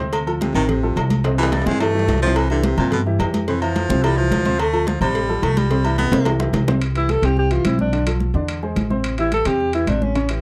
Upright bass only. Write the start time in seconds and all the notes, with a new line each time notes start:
Already playing: D2
0.54 A1
0.96 C2
1.66 G2
2.08 C2
2.78 G2
3.19 F2
3.89 C2
4.31 D2
5.01 A1
5.42 C2
6.12 C2
6.53 C2
7.22 C2
7.65 B1
8.34 E2
8.76 A1
9.45 E2
9.87 A1